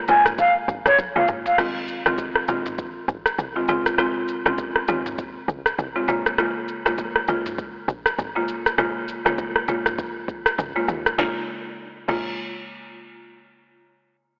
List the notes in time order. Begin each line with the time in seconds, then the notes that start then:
0.08 A#1 C#3 G#3 A#3 F4 G#5, shaker
0.26 cross-stick, mid tom, shaker
0.38 F5, kick, shaker
0.68 G#1, kick, shaker
0.86 A#1 C#5, cross-stick, shaker
0.98 kick, high tom, shaker
1.16 C#2 C#3 G#3 A#3 F4 F5
1.28 F#1, mid tom, shaker
1.46 F5, floor tom, shaker
1.58 F1 D#3 G#3 C4 F4, kick, cross-stick, crash, shaker
1.88 shaker
2.06 C2 D#3 G#3 C4 F4, cross-stick, shaker
2.18 kick, shaker
2.35 cross-stick
2.48 A#1 D#3 G#3 C4 F4, shaker
2.66 mid tom, shaker
2.78 kick, shaker
3.08 G#1, kick, shaker
3.26 cross-stick, shaker
3.39 C2, kick, shaker
3.56 D#3 G#3 C4 F4
3.68 C#2 C#3 G#3 C4 F4, shaker
3.86 cross-stick, shaker
3.98 C#3 G#3 C4 F4, kick, cross-stick, shaker
4.28 shaker
4.46 C2 G#3 C4 C#4 F4, cross-stick, shaker
4.58 kick, shaker
4.76 cross-stick
4.88 D#2 C#3 G#3 C4 F4, shaker
5.06 mid tom, shaker
5.18 kick, shaker
5.48 C#2, kick, shaker
5.66 cross-stick, shaker
5.79 C2, kick, shaker
5.95 C#3 G#3 C4 F4
6.08 A#1 C#3 G#3 A#3 F4, shaker
6.26 cross-stick, shaker
6.38 C#3 G#3 A#3 F4, kick, cross-stick, shaker
6.68 shaker
6.86 F1 C#3 G#3 A#3 F4, cross-stick, shaker
6.98 kick, shaker
7.16 cross-stick
7.28 C#2 C#3 G#3 A#3 F4, shaker
7.46 mid tom, shaker
7.58 kick, shaker
7.88 A#1, kick, shaker
8.06 cross-stick, shaker
8.19 G#1, kick, shaker
8.36 C#3 G#3 A#3 F4
8.48 C#2, shaker
8.66 cross-stick, shaker
8.78 A#1 C#3 G#3 A#3 F4, kick, cross-stick, shaker
9.08 shaker
9.25 C#2 C#3 G#3 A#3 F4, cross-stick, shaker
9.38 kick, shaker
9.56 cross-stick
9.68 A#1 C#3 G#3 A#3 F4, shaker
9.86 cross-stick, mid tom, shaker
9.99 kick, shaker
10.28 G#1, kick, shaker
10.46 cross-stick, shaker
10.58 C#2, kick, mid tom, shaker
10.76 C#3 G#3 A#3 F4
10.88 D#2, shaker
11.06 cross-stick, shaker
11.18 A#1 C#3 G#3 A#3 F4, kick, snare
12.08 A#1 C#3 G#3 A#3 F4, kick, crash